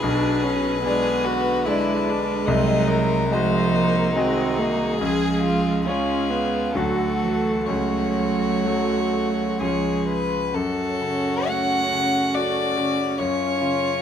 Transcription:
Already playing: G#4
0.01 B1 B2 D4 B4
0.43 C#4
0.84 D3 G#3 B3 D4 G#4 D5
1.24 F#4
1.66 G#3 D4 E4 B4 D5
2.08 D4
2.46 C2 C3 F#3 D#4 D#5
2.88 A#4
3.31 F3 G#3 D#4 F#4 C5 D#5
3.73 A#3
4.15 D#3 G#3 C4 F#4 G#4 D#5
4.59 A#3
5.01 C#2 C#3 F3 G#3 G#4
5.43 F4
5.86 G#3 C#4 F4 G#4 C#5
6.30 B3
6.75 D2 D3 F#3 A3 F#4 A4
7.22 E3
7.66 C#2 C#3 F#3 A3 F#4 C#5
8.65 F#3 F#4 A4
9.59 C#2 C#3 F3 G#3 F4 G#4 C#5
10.08 B4
10.53 F#2 C#4 F#4 A4
11.00 C#3
11.48 A3 F#5
11.92 C#3
12.35 F#4 A4 D5
12.77 C#3 F#4
13.18 F#2 C#4 F4 C#5
13.59 C#3 F4

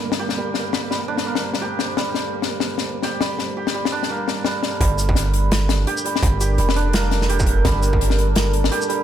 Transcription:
Already playing: G3 A#3 D4 G4 A4 C5
0.12 snare
0.19 G4
0.29 snare
0.38 G3
0.54 snare
0.73 G4, snare
0.90 G3, snare
1.08 D4
1.17 snare
1.26 A#3
1.35 snare
1.54 snare
1.61 G4
1.79 snare
1.97 G3, snare
2.15 snare
2.42 snare
2.60 snare
2.78 snare
3.03 G4, snare
3.21 G3, snare
3.39 snare
3.57 G4
3.67 snare
3.74 G3
3.85 snare
3.92 D4
4.03 snare
4.10 A#3
4.28 snare
4.45 G3, snare
4.63 snare
4.81 G1 G3 D4 A4 A#4, kick, closed hi-hat
4.98 closed hi-hat, shaker
5.09 kick
5.15 snare, closed hi-hat
5.33 closed hi-hat
5.51 snare, closed hi-hat
5.69 snare, closed hi-hat
5.87 G4, closed hi-hat
5.97 shaker
6.05 G3, closed hi-hat
6.16 snare
6.23 G1, kick, closed hi-hat
6.41 G4, closed hi-hat, shaker
6.58 F1 G3, closed hi-hat
6.69 snare
6.76 D4, closed hi-hat
6.93 A#3, snare, closed hi-hat
7.11 snare, closed hi-hat
7.22 snare
7.29 G4, closed hi-hat
7.39 kick, shaker
7.46 closed hi-hat
7.65 G1 G3, kick, snare, closed hi-hat
7.83 closed hi-hat, shaker
7.93 kick
8.01 closed hi-hat
8.10 snare
8.18 closed hi-hat
8.35 snare, closed hi-hat
8.53 closed hi-hat
8.64 snare
8.71 G4, closed hi-hat
8.82 shaker
8.89 G3, closed hi-hat

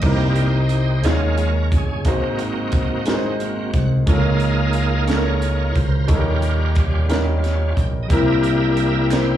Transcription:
0.01 C2 C3 G3 A#3 C4 D#4 G4 A#4 C5, kick, crash
0.36 closed hi-hat
0.69 closed hi-hat
1.03 D#2 D#3 G#3 C#4 D#4 F4 A#4 C#5, snare, closed hi-hat
1.38 closed hi-hat
1.72 G1 G#4, kick, closed hi-hat
2.05 G#1 G#2 G#3 A#3 C4 D#4 F#4 C5, kick, closed hi-hat
2.39 closed hi-hat
2.72 kick, closed hi-hat
3.06 G#3 D#4 F#4 A#4, snare, closed hi-hat
3.14 C5
3.40 A#3 C4 F#4, closed hi-hat
3.74 C2 F#5, kick, closed hi-hat
4.06 C#2 C#3 G#3 A#3 C#4 D#4 F4 G#4 A4 A#4 F5, kick, closed hi-hat
4.16 A#4
4.40 closed hi-hat
4.73 closed hi-hat
5.07 G#3 C#4 F4 A4 A#4 C#5, snare, closed hi-hat
5.16 A#4
5.41 A#3 D#4 F4, closed hi-hat
5.73 C#2 C5, kick, closed hi-hat
6.07 D#2 D#3 G3 C#4 D#4 F4 G4 A4 A#4, kick, closed hi-hat
6.17 A#4
6.42 closed hi-hat
6.75 kick, closed hi-hat
7.09 G3 C#4 D#4 A#4, snare, closed hi-hat
7.42 G3 C#4 F4, closed hi-hat
7.46 snare
7.75 A#1 G5, kick, closed hi-hat
8.03 D#5
8.08 C2 C3 G3 A#3 C4 E4 G4 A#4 E5, kick, closed hi-hat
8.12 A#4
8.43 closed hi-hat
8.77 closed hi-hat
9.11 G3 C4 E4 G4 A#4 C5, snare, clap, closed hi-hat

